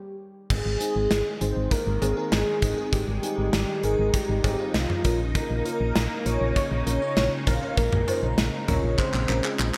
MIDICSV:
0, 0, Header, 1, 6, 480
1, 0, Start_track
1, 0, Tempo, 606061
1, 398, Time_signature, 4, 2, 24, 8
1, 7739, End_track
2, 0, Start_track
2, 0, Title_t, "Soft synth lead"
2, 0, Program_c, 0, 80
2, 0, Note_on_c, 0, 67, 86
2, 126, Note_off_c, 0, 67, 0
2, 398, Note_on_c, 0, 68, 98
2, 1119, Note_on_c, 0, 72, 89
2, 1131, Note_off_c, 0, 68, 0
2, 1354, Note_off_c, 0, 72, 0
2, 1359, Note_on_c, 0, 70, 98
2, 1839, Note_on_c, 0, 68, 97
2, 1850, Note_off_c, 0, 70, 0
2, 2198, Note_off_c, 0, 68, 0
2, 2319, Note_on_c, 0, 67, 100
2, 3038, Note_on_c, 0, 68, 91
2, 3050, Note_off_c, 0, 67, 0
2, 3280, Note_on_c, 0, 67, 100
2, 3291, Note_off_c, 0, 68, 0
2, 3760, Note_on_c, 0, 65, 96
2, 3772, Note_off_c, 0, 67, 0
2, 4119, Note_off_c, 0, 65, 0
2, 4239, Note_on_c, 0, 70, 111
2, 4960, Note_on_c, 0, 73, 104
2, 4971, Note_off_c, 0, 70, 0
2, 5194, Note_off_c, 0, 73, 0
2, 5199, Note_on_c, 0, 73, 116
2, 5920, Note_on_c, 0, 77, 109
2, 5932, Note_off_c, 0, 73, 0
2, 6154, Note_off_c, 0, 77, 0
2, 6159, Note_on_c, 0, 70, 111
2, 6878, Note_on_c, 0, 73, 103
2, 6890, Note_off_c, 0, 70, 0
2, 7118, Note_on_c, 0, 72, 102
2, 7130, Note_off_c, 0, 73, 0
2, 7739, Note_off_c, 0, 72, 0
2, 7739, End_track
3, 0, Start_track
3, 0, Title_t, "FM electric piano"
3, 0, Program_c, 1, 5
3, 638, Note_on_c, 1, 60, 75
3, 638, Note_on_c, 1, 63, 70
3, 638, Note_on_c, 1, 68, 86
3, 843, Note_off_c, 1, 60, 0
3, 843, Note_off_c, 1, 63, 0
3, 843, Note_off_c, 1, 68, 0
3, 1118, Note_on_c, 1, 68, 84
3, 1119, Note_on_c, 1, 60, 76
3, 1119, Note_on_c, 1, 63, 70
3, 1323, Note_off_c, 1, 68, 0
3, 1324, Note_off_c, 1, 60, 0
3, 1324, Note_off_c, 1, 63, 0
3, 1598, Note_on_c, 1, 63, 66
3, 1598, Note_on_c, 1, 68, 80
3, 1599, Note_on_c, 1, 60, 72
3, 1701, Note_off_c, 1, 60, 0
3, 1701, Note_off_c, 1, 63, 0
3, 1701, Note_off_c, 1, 68, 0
3, 1717, Note_on_c, 1, 60, 68
3, 1717, Note_on_c, 1, 63, 64
3, 1717, Note_on_c, 1, 68, 75
3, 1922, Note_off_c, 1, 68, 0
3, 1923, Note_off_c, 1, 60, 0
3, 1923, Note_off_c, 1, 63, 0
3, 2077, Note_on_c, 1, 60, 76
3, 2077, Note_on_c, 1, 63, 71
3, 2078, Note_on_c, 1, 68, 85
3, 2180, Note_off_c, 1, 60, 0
3, 2180, Note_off_c, 1, 63, 0
3, 2180, Note_off_c, 1, 68, 0
3, 2199, Note_on_c, 1, 60, 66
3, 2199, Note_on_c, 1, 63, 61
3, 2199, Note_on_c, 1, 68, 78
3, 2403, Note_off_c, 1, 63, 0
3, 2404, Note_off_c, 1, 60, 0
3, 2404, Note_off_c, 1, 68, 0
3, 2558, Note_on_c, 1, 60, 76
3, 2559, Note_on_c, 1, 63, 69
3, 2559, Note_on_c, 1, 68, 86
3, 2763, Note_off_c, 1, 60, 0
3, 2763, Note_off_c, 1, 63, 0
3, 2763, Note_off_c, 1, 68, 0
3, 3038, Note_on_c, 1, 63, 73
3, 3038, Note_on_c, 1, 70, 87
3, 3039, Note_on_c, 1, 60, 78
3, 3243, Note_off_c, 1, 60, 0
3, 3243, Note_off_c, 1, 63, 0
3, 3243, Note_off_c, 1, 70, 0
3, 3517, Note_on_c, 1, 60, 73
3, 3518, Note_on_c, 1, 63, 68
3, 3518, Note_on_c, 1, 68, 83
3, 3620, Note_off_c, 1, 60, 0
3, 3621, Note_off_c, 1, 63, 0
3, 3621, Note_off_c, 1, 68, 0
3, 3636, Note_on_c, 1, 63, 65
3, 3636, Note_on_c, 1, 65, 76
3, 3637, Note_on_c, 1, 60, 70
3, 3842, Note_off_c, 1, 60, 0
3, 3842, Note_off_c, 1, 63, 0
3, 3842, Note_off_c, 1, 65, 0
3, 3998, Note_on_c, 1, 61, 81
3, 3998, Note_on_c, 1, 70, 93
3, 3999, Note_on_c, 1, 65, 77
3, 4408, Note_off_c, 1, 61, 0
3, 4408, Note_off_c, 1, 65, 0
3, 4408, Note_off_c, 1, 70, 0
3, 4478, Note_on_c, 1, 61, 76
3, 4478, Note_on_c, 1, 65, 72
3, 4478, Note_on_c, 1, 70, 85
3, 4683, Note_off_c, 1, 61, 0
3, 4683, Note_off_c, 1, 65, 0
3, 4683, Note_off_c, 1, 70, 0
3, 4958, Note_on_c, 1, 61, 78
3, 4958, Note_on_c, 1, 65, 74
3, 4958, Note_on_c, 1, 70, 88
3, 5163, Note_off_c, 1, 61, 0
3, 5163, Note_off_c, 1, 65, 0
3, 5163, Note_off_c, 1, 70, 0
3, 5438, Note_on_c, 1, 61, 75
3, 5438, Note_on_c, 1, 65, 66
3, 5438, Note_on_c, 1, 70, 83
3, 5540, Note_off_c, 1, 70, 0
3, 5541, Note_off_c, 1, 61, 0
3, 5541, Note_off_c, 1, 65, 0
3, 5559, Note_on_c, 1, 65, 65
3, 5559, Note_on_c, 1, 73, 74
3, 5560, Note_on_c, 1, 61, 69
3, 5763, Note_off_c, 1, 65, 0
3, 5763, Note_off_c, 1, 73, 0
3, 5764, Note_off_c, 1, 61, 0
3, 5918, Note_on_c, 1, 70, 86
3, 5919, Note_on_c, 1, 61, 77
3, 5919, Note_on_c, 1, 65, 72
3, 6021, Note_off_c, 1, 61, 0
3, 6021, Note_off_c, 1, 65, 0
3, 6021, Note_off_c, 1, 70, 0
3, 6039, Note_on_c, 1, 61, 67
3, 6039, Note_on_c, 1, 65, 66
3, 6039, Note_on_c, 1, 70, 74
3, 6243, Note_off_c, 1, 70, 0
3, 6244, Note_off_c, 1, 61, 0
3, 6244, Note_off_c, 1, 65, 0
3, 6398, Note_on_c, 1, 61, 76
3, 6398, Note_on_c, 1, 65, 69
3, 6398, Note_on_c, 1, 72, 86
3, 6603, Note_off_c, 1, 61, 0
3, 6603, Note_off_c, 1, 65, 0
3, 6603, Note_off_c, 1, 72, 0
3, 6877, Note_on_c, 1, 61, 80
3, 6877, Note_on_c, 1, 65, 70
3, 6877, Note_on_c, 1, 70, 88
3, 7083, Note_off_c, 1, 61, 0
3, 7083, Note_off_c, 1, 65, 0
3, 7083, Note_off_c, 1, 70, 0
3, 7358, Note_on_c, 1, 61, 73
3, 7358, Note_on_c, 1, 65, 68
3, 7358, Note_on_c, 1, 70, 83
3, 7460, Note_off_c, 1, 61, 0
3, 7460, Note_off_c, 1, 65, 0
3, 7460, Note_off_c, 1, 70, 0
3, 7478, Note_on_c, 1, 61, 66
3, 7478, Note_on_c, 1, 65, 62
3, 7478, Note_on_c, 1, 68, 74
3, 7683, Note_off_c, 1, 61, 0
3, 7683, Note_off_c, 1, 65, 0
3, 7683, Note_off_c, 1, 68, 0
3, 7739, End_track
4, 0, Start_track
4, 0, Title_t, "String machine"
4, 0, Program_c, 2, 50
4, 399, Note_on_c, 2, 51, 84
4, 399, Note_on_c, 2, 56, 77
4, 399, Note_on_c, 2, 63, 93
4, 3966, Note_off_c, 2, 56, 0
4, 3967, Note_off_c, 2, 51, 0
4, 3997, Note_on_c, 2, 49, 88
4, 3997, Note_on_c, 2, 58, 79
4, 5898, Note_off_c, 2, 58, 0
4, 5918, Note_on_c, 2, 56, 77
4, 7739, Note_off_c, 2, 49, 0
4, 7739, Note_off_c, 2, 56, 0
4, 7739, Note_off_c, 2, 63, 0
4, 7739, End_track
5, 0, Start_track
5, 0, Title_t, "FM bass"
5, 0, Program_c, 3, 39
5, 398, Note_on_c, 3, 32, 112
5, 493, Note_off_c, 3, 32, 0
5, 519, Note_on_c, 3, 32, 101
5, 614, Note_off_c, 3, 32, 0
5, 758, Note_on_c, 3, 32, 95
5, 854, Note_off_c, 3, 32, 0
5, 878, Note_on_c, 3, 32, 104
5, 974, Note_off_c, 3, 32, 0
5, 1119, Note_on_c, 3, 32, 110
5, 1214, Note_off_c, 3, 32, 0
5, 1239, Note_on_c, 3, 32, 99
5, 1334, Note_off_c, 3, 32, 0
5, 1479, Note_on_c, 3, 32, 105
5, 1574, Note_off_c, 3, 32, 0
5, 1598, Note_on_c, 3, 32, 104
5, 1694, Note_off_c, 3, 32, 0
5, 1838, Note_on_c, 3, 32, 106
5, 1934, Note_off_c, 3, 32, 0
5, 2078, Note_on_c, 3, 32, 106
5, 2174, Note_off_c, 3, 32, 0
5, 2318, Note_on_c, 3, 32, 106
5, 2414, Note_off_c, 3, 32, 0
5, 2439, Note_on_c, 3, 32, 94
5, 2534, Note_off_c, 3, 32, 0
5, 2679, Note_on_c, 3, 32, 100
5, 2774, Note_off_c, 3, 32, 0
5, 2798, Note_on_c, 3, 32, 104
5, 2894, Note_off_c, 3, 32, 0
5, 3039, Note_on_c, 3, 32, 102
5, 3134, Note_off_c, 3, 32, 0
5, 3159, Note_on_c, 3, 32, 104
5, 3254, Note_off_c, 3, 32, 0
5, 3398, Note_on_c, 3, 32, 101
5, 3494, Note_off_c, 3, 32, 0
5, 3518, Note_on_c, 3, 32, 106
5, 3614, Note_off_c, 3, 32, 0
5, 3758, Note_on_c, 3, 36, 95
5, 3854, Note_off_c, 3, 36, 0
5, 3998, Note_on_c, 3, 34, 106
5, 4285, Note_off_c, 3, 34, 0
5, 4359, Note_on_c, 3, 34, 96
5, 4454, Note_off_c, 3, 34, 0
5, 4597, Note_on_c, 3, 34, 105
5, 4693, Note_off_c, 3, 34, 0
5, 4718, Note_on_c, 3, 34, 111
5, 4814, Note_off_c, 3, 34, 0
5, 4957, Note_on_c, 3, 34, 104
5, 5053, Note_off_c, 3, 34, 0
5, 5077, Note_on_c, 3, 34, 104
5, 5173, Note_off_c, 3, 34, 0
5, 5317, Note_on_c, 3, 34, 102
5, 5413, Note_off_c, 3, 34, 0
5, 5438, Note_on_c, 3, 34, 101
5, 5534, Note_off_c, 3, 34, 0
5, 5678, Note_on_c, 3, 34, 106
5, 5774, Note_off_c, 3, 34, 0
5, 5918, Note_on_c, 3, 34, 102
5, 6013, Note_off_c, 3, 34, 0
5, 6157, Note_on_c, 3, 34, 109
5, 6253, Note_off_c, 3, 34, 0
5, 6276, Note_on_c, 3, 34, 93
5, 6373, Note_off_c, 3, 34, 0
5, 6517, Note_on_c, 3, 34, 96
5, 6613, Note_off_c, 3, 34, 0
5, 6637, Note_on_c, 3, 34, 99
5, 6733, Note_off_c, 3, 34, 0
5, 6878, Note_on_c, 3, 34, 97
5, 6974, Note_off_c, 3, 34, 0
5, 6997, Note_on_c, 3, 34, 95
5, 7093, Note_off_c, 3, 34, 0
5, 7237, Note_on_c, 3, 34, 102
5, 7333, Note_off_c, 3, 34, 0
5, 7358, Note_on_c, 3, 34, 102
5, 7454, Note_off_c, 3, 34, 0
5, 7598, Note_on_c, 3, 34, 93
5, 7694, Note_off_c, 3, 34, 0
5, 7739, End_track
6, 0, Start_track
6, 0, Title_t, "Drums"
6, 398, Note_on_c, 9, 36, 103
6, 398, Note_on_c, 9, 49, 101
6, 477, Note_off_c, 9, 36, 0
6, 477, Note_off_c, 9, 49, 0
6, 639, Note_on_c, 9, 42, 80
6, 718, Note_off_c, 9, 42, 0
6, 876, Note_on_c, 9, 38, 111
6, 880, Note_on_c, 9, 42, 67
6, 956, Note_off_c, 9, 38, 0
6, 959, Note_off_c, 9, 42, 0
6, 1117, Note_on_c, 9, 42, 65
6, 1196, Note_off_c, 9, 42, 0
6, 1357, Note_on_c, 9, 36, 96
6, 1357, Note_on_c, 9, 42, 71
6, 1436, Note_off_c, 9, 36, 0
6, 1437, Note_off_c, 9, 42, 0
6, 1598, Note_on_c, 9, 56, 63
6, 1600, Note_on_c, 9, 42, 84
6, 1677, Note_off_c, 9, 56, 0
6, 1679, Note_off_c, 9, 42, 0
6, 1836, Note_on_c, 9, 42, 75
6, 1838, Note_on_c, 9, 38, 107
6, 1916, Note_off_c, 9, 42, 0
6, 1917, Note_off_c, 9, 38, 0
6, 2076, Note_on_c, 9, 42, 80
6, 2078, Note_on_c, 9, 36, 95
6, 2155, Note_off_c, 9, 42, 0
6, 2157, Note_off_c, 9, 36, 0
6, 2318, Note_on_c, 9, 36, 103
6, 2319, Note_on_c, 9, 42, 79
6, 2397, Note_off_c, 9, 36, 0
6, 2398, Note_off_c, 9, 42, 0
6, 2559, Note_on_c, 9, 42, 79
6, 2638, Note_off_c, 9, 42, 0
6, 2796, Note_on_c, 9, 38, 119
6, 2800, Note_on_c, 9, 42, 65
6, 2875, Note_off_c, 9, 38, 0
6, 2879, Note_off_c, 9, 42, 0
6, 3036, Note_on_c, 9, 42, 63
6, 3115, Note_off_c, 9, 42, 0
6, 3277, Note_on_c, 9, 36, 94
6, 3277, Note_on_c, 9, 42, 70
6, 3356, Note_off_c, 9, 36, 0
6, 3356, Note_off_c, 9, 42, 0
6, 3518, Note_on_c, 9, 36, 102
6, 3518, Note_on_c, 9, 56, 65
6, 3520, Note_on_c, 9, 42, 86
6, 3597, Note_off_c, 9, 36, 0
6, 3597, Note_off_c, 9, 56, 0
6, 3599, Note_off_c, 9, 42, 0
6, 3756, Note_on_c, 9, 42, 75
6, 3757, Note_on_c, 9, 38, 109
6, 3835, Note_off_c, 9, 42, 0
6, 3836, Note_off_c, 9, 38, 0
6, 3879, Note_on_c, 9, 47, 75
6, 3958, Note_off_c, 9, 47, 0
6, 3995, Note_on_c, 9, 42, 80
6, 3998, Note_on_c, 9, 36, 96
6, 4074, Note_off_c, 9, 42, 0
6, 4077, Note_off_c, 9, 36, 0
6, 4238, Note_on_c, 9, 36, 106
6, 4238, Note_on_c, 9, 42, 80
6, 4317, Note_off_c, 9, 36, 0
6, 4317, Note_off_c, 9, 42, 0
6, 4479, Note_on_c, 9, 42, 77
6, 4558, Note_off_c, 9, 42, 0
6, 4717, Note_on_c, 9, 38, 115
6, 4720, Note_on_c, 9, 42, 68
6, 4796, Note_off_c, 9, 38, 0
6, 4799, Note_off_c, 9, 42, 0
6, 4957, Note_on_c, 9, 42, 65
6, 5036, Note_off_c, 9, 42, 0
6, 5197, Note_on_c, 9, 36, 98
6, 5197, Note_on_c, 9, 42, 70
6, 5276, Note_off_c, 9, 36, 0
6, 5276, Note_off_c, 9, 42, 0
6, 5440, Note_on_c, 9, 42, 85
6, 5519, Note_off_c, 9, 42, 0
6, 5675, Note_on_c, 9, 42, 77
6, 5677, Note_on_c, 9, 38, 107
6, 5755, Note_off_c, 9, 42, 0
6, 5756, Note_off_c, 9, 38, 0
6, 5915, Note_on_c, 9, 42, 79
6, 5916, Note_on_c, 9, 56, 72
6, 5918, Note_on_c, 9, 36, 97
6, 5994, Note_off_c, 9, 42, 0
6, 5995, Note_off_c, 9, 56, 0
6, 5997, Note_off_c, 9, 36, 0
6, 6157, Note_on_c, 9, 36, 106
6, 6157, Note_on_c, 9, 42, 78
6, 6236, Note_off_c, 9, 36, 0
6, 6236, Note_off_c, 9, 42, 0
6, 6277, Note_on_c, 9, 47, 104
6, 6356, Note_off_c, 9, 47, 0
6, 6398, Note_on_c, 9, 42, 79
6, 6398, Note_on_c, 9, 56, 72
6, 6477, Note_off_c, 9, 42, 0
6, 6477, Note_off_c, 9, 56, 0
6, 6635, Note_on_c, 9, 38, 115
6, 6639, Note_on_c, 9, 42, 65
6, 6715, Note_off_c, 9, 38, 0
6, 6718, Note_off_c, 9, 42, 0
6, 6876, Note_on_c, 9, 42, 65
6, 6878, Note_on_c, 9, 45, 96
6, 6955, Note_off_c, 9, 42, 0
6, 6957, Note_off_c, 9, 45, 0
6, 7116, Note_on_c, 9, 36, 96
6, 7117, Note_on_c, 9, 39, 62
6, 7195, Note_off_c, 9, 36, 0
6, 7196, Note_off_c, 9, 39, 0
6, 7237, Note_on_c, 9, 39, 60
6, 7316, Note_off_c, 9, 39, 0
6, 7357, Note_on_c, 9, 39, 76
6, 7437, Note_off_c, 9, 39, 0
6, 7478, Note_on_c, 9, 39, 72
6, 7557, Note_off_c, 9, 39, 0
6, 7598, Note_on_c, 9, 39, 94
6, 7677, Note_off_c, 9, 39, 0
6, 7739, End_track
0, 0, End_of_file